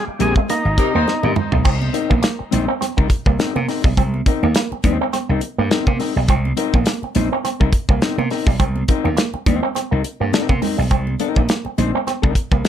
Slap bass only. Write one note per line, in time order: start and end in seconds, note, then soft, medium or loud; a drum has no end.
0.08 muted slap bass stroke soft
0.20 0.33 A#1 medium
0.65 0.75 G#1 loud
0.95 1.05 D#2 medium
1.24 1.34 G#2 loud
1.53 1.63 B1 medium
1.66 1.89 C2 loud
2.11 2.21 A#1 medium
2.40 muted slap bass stroke soft
2.53 2.66 A#1 medium
2.98 3.08 C2 medium
3.27 3.37 C2 medium
3.56 3.66 C3 loud
3.84 3.94 B1 medium
3.97 4.20 C2 loud
4.43 4.53 D#2 medium
4.72 muted slap bass stroke soft
4.84 4.97 D#2 medium
5.29 5.39 C2 medium
5.58 5.68 G2 medium
5.87 5.97 C3 loud
6.16 6.29 B1 medium
6.29 6.52 C2 loud
6.74 6.84 A#1 medium
7.03 muted slap bass stroke soft
7.16 7.28 A#1 medium
7.61 7.71 C2 medium
7.89 7.99 C2 medium
8.18 8.28 C3 loud
8.47 8.57 B1 medium
8.60 8.83 C2 loud
9.05 9.15 D#2 medium
9.34 muted slap bass stroke soft
9.46 9.59 D#2 loud
9.92 10.02 C2 medium
10.21 10.31 G2 medium
10.49 10.59 C3 loud
10.79 10.91 B1 medium
10.91 11.14 C2 loud
11.37 11.47 A#1 medium
11.65 muted slap bass stroke soft
11.78 11.91 A#1 medium
12.23 12.33 C2 medium
12.52 12.62 C2 medium